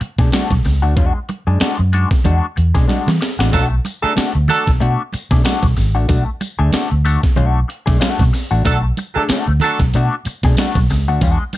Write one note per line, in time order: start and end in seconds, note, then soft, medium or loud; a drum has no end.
0.01 muted clean electric guitar stroke soft
0.01 muted fingered electric bass stroke soft
0.01 closed hi-hat medium
0.01 muted conga soft
0.19 0.29 B2 loud
0.19 0.31 A3 medium
0.19 0.32 D4 soft
0.19 0.31 G#4 medium
0.19 kick medium
0.19 snare soft
0.32 0.52 A3 medium
0.32 0.53 D4 medium
0.32 0.53 F#4 medium
0.32 snare loud
0.32 closed hi-hat medium
0.32 high conga medium
0.51 0.62 B1 medium
0.51 kick medium
0.51 snare soft
0.51 high conga medium
0.65 0.83 C#2 medium
0.65 muted clean electric guitar stroke soft
0.65 snare soft
0.65 open hi-hat medium
0.82 0.97 D2 medium
0.82 0.96 A3 medium
0.82 0.95 D4 medium
0.82 0.95 F#4 medium
0.96 1.11 E2 loud
0.96 1.18 G#3 medium
0.96 1.15 D4 medium
0.96 1.14 F#4 medium
0.96 kick loud
0.96 closed hi-hat medium
0.96 muted conga medium
1.15 muted clean electric guitar stroke soft
1.29 muted clean electric guitar stroke soft
1.29 closed hi-hat medium
1.29 muted conga medium
1.47 1.58 F#2 medium
1.47 1.59 G#3 soft
1.47 1.60 D4 medium
1.47 1.59 G#4 medium
1.60 1.80 G#3 medium
1.60 1.79 D4 medium
1.60 1.78 F#4 medium
1.60 muted fingered electric bass stroke medium
1.60 snare loud
1.60 closed hi-hat loud
1.60 high conga medium
1.79 2.04 F#2 medium
1.79 muted clean electric guitar stroke soft
1.93 2.09 G#3 medium
1.93 2.09 D4 medium
1.93 2.10 F#4 medium
1.93 closed hi-hat medium
2.11 muted clean electric guitar stroke soft
2.11 kick medium
2.11 snare soft
2.24 2.39 E2 medium
2.24 2.45 G#3 medium
2.24 2.45 D4 medium
2.24 2.46 F#4 medium
2.24 closed hi-hat medium
2.24 low conga medium
2.56 2.71 E2 medium
2.56 muted clean electric guitar stroke soft
2.56 closed hi-hat medium
2.56 muted conga soft
2.74 2.86 B2 medium
2.74 2.86 G#3 soft
2.74 2.87 D4 medium
2.74 2.87 G#4 medium
2.74 kick medium
2.74 snare soft
2.88 3.08 G#3 medium
2.88 3.09 D4 medium
2.88 3.09 F#4 medium
2.88 snare soft
2.88 closed hi-hat medium
2.88 high conga medium
3.07 3.18 E3 medium
3.07 snare medium
3.07 high conga medium
3.21 muted clean electric guitar stroke soft
3.21 snare medium
3.21 open hi-hat medium
3.39 3.50 A1 medium
3.39 3.52 G#3 soft
3.39 3.52 D4 medium
3.39 3.52 F#4 medium
3.39 snare loud
3.52 3.78 B1 loud
3.52 3.65 F#3 loud
3.52 3.74 A3 medium
3.52 3.71 D4 medium
3.52 3.65 D4 loud
3.52 3.69 F#4 loud
3.52 3.65 A4 loud
3.52 kick loud
3.52 closed hi-hat medium
3.52 tambourine soft
3.52 muted conga medium
3.70 muted clean electric guitar stroke soft
3.85 muted clean electric guitar stroke soft
3.85 closed hi-hat medium
3.85 tambourine medium
3.85 muted conga medium
4.02 4.12 F#3 medium
4.02 4.14 A3 medium
4.02 4.16 D4 medium
4.02 4.12 D4 medium
4.02 4.15 G#4 medium
4.02 4.12 A4 medium
4.02 muted fingered electric bass stroke soft
4.16 4.36 A3 medium
4.16 4.35 D4 medium
4.16 4.34 F#4 medium
4.16 muted fingered electric bass stroke soft
4.16 snare loud
4.16 closed hi-hat medium
4.16 tambourine medium
4.16 high conga medium
4.35 4.46 D2 medium
4.35 muted clean electric guitar stroke soft
4.48 4.69 F#3 medium
4.48 4.65 A3 medium
4.48 4.65 D4 medium
4.48 4.70 D4 loud
4.48 4.65 F#4 medium
4.48 4.70 A4 loud
4.48 closed hi-hat medium
4.48 tambourine medium
4.48 low conga medium
4.66 4.78 B1 medium
4.66 muted clean electric guitar stroke soft
4.66 kick medium
4.66 snare soft
4.80 4.95 B2 loud
4.80 5.01 A3 medium
4.80 5.01 D4 medium
4.80 5.01 F#4 medium
4.80 closed hi-hat medium
5.13 muted clean electric guitar stroke soft
5.13 muted fingered electric bass stroke soft
5.13 closed hi-hat medium
5.13 tambourine soft
5.13 muted conga soft
5.31 5.42 B2 medium
5.31 5.43 A3 soft
5.31 5.44 D4 medium
5.31 5.44 G#4 medium
5.31 kick medium
5.31 snare soft
5.44 5.65 A3 medium
5.44 5.65 D4 medium
5.44 5.65 F#4 medium
5.44 snare loud
5.44 closed hi-hat medium
5.44 tambourine loud
5.44 high conga medium
5.62 5.74 B1 medium
5.62 kick loud
5.62 snare soft
5.62 high conga medium
5.77 5.95 G#1 medium
5.77 muted clean electric guitar stroke soft
5.77 snare soft
5.77 open hi-hat medium
5.77 tambourine soft
5.95 6.06 A1 medium
5.95 6.07 A3 soft
5.95 6.08 D4 medium
5.95 6.08 F#4 medium
6.08 6.23 B1 loud
6.08 6.29 A3 medium
6.08 6.26 D4 medium
6.08 6.25 F#4 medium
6.08 kick loud
6.08 closed hi-hat medium
6.08 tambourine medium
6.08 muted conga medium
6.26 muted clean electric guitar stroke soft
6.41 muted clean electric guitar stroke soft
6.41 closed hi-hat medium
6.41 tambourine medium
6.41 muted conga medium
6.59 6.70 D2 medium
6.59 6.72 A3 medium
6.59 6.72 D4 medium
6.59 6.72 G#4 medium
6.72 6.93 A3 medium
6.72 6.91 D4 loud
6.72 6.90 F#4 medium
6.72 muted fingered electric bass stroke soft
6.72 snare loud
6.72 closed hi-hat loud
6.72 tambourine medium
6.72 high conga medium
6.91 7.16 D2 medium
6.91 muted clean electric guitar stroke soft
7.05 7.21 A3 medium
7.05 7.21 D4 medium
7.05 7.22 F#4 medium
7.05 closed hi-hat medium
7.05 tambourine soft
7.23 muted clean electric guitar stroke soft
7.23 kick medium
7.23 snare soft
7.36 7.62 B1 loud
7.36 7.58 A3 medium
7.36 7.59 D4 medium
7.36 7.59 F#4 loud
7.36 closed hi-hat medium
7.36 low conga medium
7.68 muted clean electric guitar stroke soft
7.68 closed hi-hat medium
7.86 7.98 B1 medium
7.86 7.99 A3 medium
7.86 7.99 D4 soft
7.86 7.99 G#4 medium
7.86 kick medium
7.86 snare soft
8.00 8.22 A3 medium
8.00 8.23 D4 medium
8.00 8.23 F#4 loud
8.00 snare loud
8.00 closed hi-hat medium
8.00 tambourine loud
8.00 high conga medium
8.19 8.30 B2 loud
8.19 kick medium
8.19 snare soft
8.19 high conga medium
8.33 muted clean electric guitar stroke soft
8.33 snare soft
8.33 open hi-hat medium
8.33 tambourine medium
8.51 8.62 A1 medium
8.51 8.64 A3 medium
8.51 8.64 D4 medium
8.51 8.64 F#4 medium
8.65 8.77 F#3 loud
8.65 8.85 A3 medium
8.65 8.77 D4 loud
8.65 8.84 D4 medium
8.65 8.83 F#4 medium
8.65 8.77 A4 loud
8.65 kick loud
8.65 closed hi-hat medium
8.65 tambourine medium
8.65 muted conga soft
8.84 muted clean electric guitar stroke soft
8.97 muted clean electric guitar stroke soft
8.97 closed hi-hat medium
8.97 tambourine medium
8.97 muted conga medium
9.14 9.24 F#3 medium
9.14 9.29 A3 soft
9.14 9.24 D4 medium
9.14 9.29 D4 medium
9.14 9.28 G#4 medium
9.14 9.24 A4 medium
9.14 muted fingered electric bass stroke medium
9.29 9.51 A3 medium
9.29 9.48 D4 loud
9.29 9.48 F#4 medium
9.29 muted fingered electric bass stroke medium
9.29 snare loud
9.29 closed hi-hat loud
9.29 tambourine medium
9.29 high conga medium
9.48 9.58 D2 medium
9.48 muted clean electric guitar stroke soft
9.60 9.82 F#3 loud
9.60 9.78 A3 medium
9.60 9.82 D4 loud
9.60 9.78 D4 medium
9.60 9.82 A4 loud
9.60 closed hi-hat medium
9.60 tambourine soft
9.60 low conga medium
9.64 9.79 F#4 medium
9.80 9.91 B1 loud
9.80 muted clean electric guitar stroke soft
9.80 kick medium
9.80 snare soft
9.93 10.08 B2 medium
9.93 10.14 A3 medium
9.93 10.14 D4 loud
9.93 10.15 F#4 loud
9.93 closed hi-hat medium
9.93 tambourine soft
10.25 muted fingered electric bass stroke soft
10.25 muted clean electric guitar stroke soft
10.25 closed hi-hat medium
10.25 tambourine soft
10.25 muted conga soft
10.43 10.54 B2 medium
10.43 10.57 A3 medium
10.43 10.57 D4 medium
10.43 10.56 G#4 medium
10.43 kick medium
10.43 snare soft
10.57 10.78 A3 medium
10.57 10.78 D4 medium
10.57 10.78 F#4 medium
10.57 snare loud
10.57 closed hi-hat medium
10.57 tambourine loud
10.57 high conga medium
10.75 10.90 B1 medium
10.75 kick loud
10.75 snare soft
10.75 high conga medium
10.90 11.08 C#2 medium
10.90 muted clean electric guitar stroke soft
10.90 snare soft
10.90 open hi-hat medium
10.90 tambourine soft
11.08 11.18 D2 medium
11.08 11.21 A3 medium
11.08 11.21 D4 medium
11.08 11.20 F#4 medium
11.21 11.35 E2 loud
11.21 11.43 G#3 medium
11.21 11.40 D4 medium
11.21 11.39 F#4 medium
11.21 kick loud
11.21 closed hi-hat medium
11.21 tambourine medium
11.21 muted conga medium
11.40 muted clean electric guitar stroke soft
11.53 muted clean electric guitar stroke soft
11.53 closed hi-hat medium
11.53 tambourine medium
11.53 muted conga medium